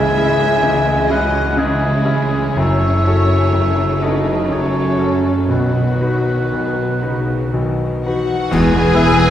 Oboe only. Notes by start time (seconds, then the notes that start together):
Already playing: G#5
1.12 F#5
1.59 G#4
2.58 E5
4.03 D#5
4.53 C#5
5.51 B4
8.51 B4